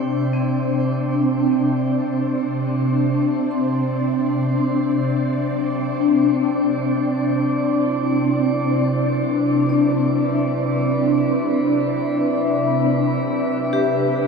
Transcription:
Already playing: ambient pad C3 C4 D4 C5 E5
0.33 vibraphone C4
3.51 vibraphone C6
5.48 vibraphone F#3
6.24 ambient pad C3
7.84 vibraphone E4
8.07 ambient pad B4
8.44 ambient pad E5
9.60 vibraphone D4
9.69 vibraphone D5
13.73 vibraphone G4

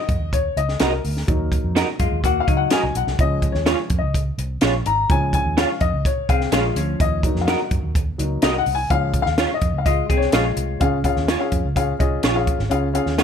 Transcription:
Already playing: upright piano D#5
0.09 fingered electric bass F#2, kick, closed hi-hat
0.21 fingered electric bass D#2
0.33 upright piano C#5, kick, closed hi-hat
0.57 fingered electric bass C#2, upright piano D#5, closed hi-hat
0.69 snare
0.80 fingered electric bass C2, clean electric guitar D#4 F#4 A#4 D#5, upright piano A#4, snare, closed hi-hat
1.04 fingered electric bass D2, open hi-hat
1.17 snare
1.28 fingered electric bass D#2, upright piano F#3 A#3 D#4, kick, closed hi-hat
1.52 kick, closed hi-hat
1.64 fingered electric bass F2
1.75 clean electric guitar D#4 F#4 A#4 D#5, snare, closed hi-hat
2.00 fingered electric bass F#2, hollow-body jazz guitar G#3 F4, kick, closed hi-hat
2.12 fingered electric bass D#2
2.24 hollow-body jazz guitar A#3 F#4, upright piano F#5, kick, closed hi-hat
2.40 upright piano F5
2.47 fingered electric bass C#2, hollow-body jazz guitar F#3 D#4, kick, closed hi-hat
2.57 upright piano F#5
2.71 clean electric guitar D#4 F#4 A#4 D#5, upright piano G#5, snare, closed hi-hat
2.83 fingered electric bass C2
2.95 fingered electric bass B1, upright piano F#5, closed hi-hat
3.07 fingered electric bass C2, snare
3.19 fingered electric bass C#2, upright piano F3 G#3 C#4 D#5, kick, closed hi-hat
3.42 kick, closed hi-hat
3.52 fingered electric bass D#2, upright piano C#5, snare
3.66 clean electric guitar C#4 F4 G#4 C#5, snare, closed hi-hat
3.90 fingered electric bass F2, kick, closed hi-hat
3.99 fingered electric bass C#2, upright piano D#5
4.14 kick, closed hi-hat
4.38 fingered electric bass C2, closed hi-hat
4.61 fingered electric bass A#1, clean electric guitar C#4 F4 G#4 C#5, snare, closed hi-hat
4.86 fingered electric bass G#1, upright piano A#5, closed hi-hat
5.10 fingered electric bass C#2, upright piano F3 G#3 C#4 G#5, kick, closed hi-hat
5.33 upright piano G#5, kick, closed hi-hat
5.45 fingered electric bass D#2
5.57 clean electric guitar C#4 F4 G#4 C#5, upright piano F5, snare, closed hi-hat
5.81 fingered electric bass F2, upright piano D#5, kick, closed hi-hat
5.94 fingered electric bass C#2
6.05 upright piano C#5, kick, closed hi-hat
6.18 muted fingered electric bass stroke
6.29 fingered electric bass C2, hollow-body jazz guitar C4 G#4, upright piano F5, kick, closed hi-hat
6.41 snare
6.52 fingered electric bass A#1, hollow-body jazz guitar G#3 F4, clean electric guitar C#4 F4 G#4 C#5, snare, closed hi-hat
6.75 fingered electric bass D2, hollow-body jazz guitar F3 C#4, closed hi-hat
7.00 fingered electric bass D#2, upright piano D#5, kick, closed hi-hat
7.23 upright piano F#3 A#3 D#4, kick, closed hi-hat
7.35 fingered electric bass F2, snare
7.41 upright piano F5
7.47 clean electric guitar D#4 F#4 A#4 D#5, upright piano F#5, snare, closed hi-hat
7.71 fingered electric bass F#2, kick, closed hi-hat
7.83 fingered electric bass D#2
7.95 kick, closed hi-hat
8.18 fingered electric bass C#2, upright piano F#3 A#3 D#4, closed hi-hat
8.42 fingered electric bass C2, clean electric guitar D#4 F#4 A#4 D#5, upright piano D#5, snare, closed hi-hat
8.58 upright piano F#5
8.66 fingered electric bass C2, open hi-hat
8.75 upright piano G#5
8.90 fingered electric bass C#2, upright piano F3 G#3 C#4 F5, kick, closed hi-hat
9.14 kick, closed hi-hat
9.22 fingered electric bass D#2, upright piano F5, snare
9.38 clean electric guitar C#4 F4 G#4 C#5, snare, closed hi-hat
9.54 upright piano D#5
9.61 fingered electric bass F2, kick, closed hi-hat
9.73 fingered electric bass C#2
9.78 upright piano F5
9.86 hollow-body jazz guitar G#3 F4, upright piano D#5, kick, closed hi-hat
10.09 fingered electric bass C2, hollow-body jazz guitar C4 G#4, kick, closed hi-hat
10.17 upright piano C#5
10.21 snare
10.32 fingered electric bass A#1, hollow-body jazz guitar G#3 F4, clean electric guitar C#4 F4 G#4 C#5, snare, closed hi-hat
10.57 fingered electric bass C2, closed hi-hat
10.80 fingered electric bass C#2, upright piano C#3 C#4 F4 G#4 F5, kick, closed hi-hat
11.04 upright piano C#4 F4 G#4 F5, kick, closed hi-hat
11.16 fingered electric bass D#2, snare
11.28 clean electric guitar C#4 F4 G#4 C#5, snare, closed hi-hat
11.39 upright piano C#4 F4 G#4 F5
11.52 fingered electric bass F2, kick, closed hi-hat
11.64 fingered electric bass C#2
11.76 upright piano C#4 F4 G#4 F5, kick, closed hi-hat
11.99 fingered electric bass C2, upright piano C#4 F4 G#4 D#5, kick, closed hi-hat
12.23 fingered electric bass A#1, clean electric guitar C#4 F4 G#4 C#5, snare, closed hi-hat
12.35 upright piano C#4 F4 G#4 F5
12.47 kick, closed hi-hat
12.59 fingered electric bass G#1, snare
12.69 fingered electric bass C#2, upright piano C#3 C#4 F4 G#4 F5, closed hi-hat
12.94 upright piano C#4 F4 G#4 F5, closed hi-hat
13.06 fingered electric bass D#2, snare
13.18 clean electric guitar C#4 F4 G#4 C#5, snare, closed hi-hat

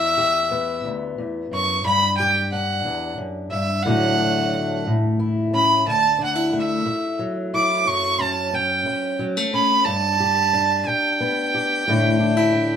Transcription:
Already playing: steel-string acoustic guitar E2, fiddle E5
0.18 steel-string acoustic guitar G4
0.51 steel-string acoustic guitar B3
0.84 steel-string acoustic guitar D2
1.18 steel-string acoustic guitar E2
1.51 steel-string acoustic guitar F#2, fiddle C#6
1.85 steel-string acoustic guitar G2, fiddle B5
2.17 steel-string acoustic guitar G4, fiddle G5
2.52 steel-string acoustic guitar D4, fiddle F#5
2.85 steel-string acoustic guitar E2
3.18 steel-string acoustic guitar F#2
3.51 steel-string acoustic guitar G2, fiddle E5
3.83 steel-string acoustic guitar A2 D3 F#3 A3, fiddle F#5
3.88 steel-string acoustic guitar F#4
4.21 steel-string acoustic guitar F#4
4.54 steel-string acoustic guitar A3
4.87 steel-string acoustic guitar A2
5.20 steel-string acoustic guitar E4
5.53 steel-string acoustic guitar C#4, fiddle B5
5.86 steel-string acoustic guitar D2, fiddle A5
6.18 steel-string acoustic guitar D4
6.24 fiddle F#5
6.35 steel-string acoustic guitar E4
6.53 steel-string acoustic guitar A3
6.59 fiddle E5
6.86 muted steel-string acoustic guitar stroke
7.19 steel-string acoustic guitar F#3
7.54 steel-string acoustic guitar E4, fiddle D6
7.85 steel-string acoustic guitar F#2, fiddle C#6
8.19 steel-string acoustic guitar C#4, fiddle A5
8.53 steel-string acoustic guitar C#4, fiddle G5
8.86 muted steel-string acoustic guitar stroke
9.19 steel-string acoustic guitar F#3
9.37 steel-string acoustic guitar A3
9.54 steel-string acoustic guitar C#4, fiddle B5
9.85 steel-string acoustic guitar G2, fiddle A5
10.20 steel-string acoustic guitar G4
10.53 steel-string acoustic guitar D4
10.87 fiddle G5, muted steel-string acoustic guitar stroke
11.20 steel-string acoustic guitar B3
11.55 steel-string acoustic guitar G4
11.88 steel-string acoustic guitar A2 D3 A3 D4 E4
12.20 steel-string acoustic guitar D4
12.37 steel-string acoustic guitar E4
12.54 steel-string acoustic guitar D4

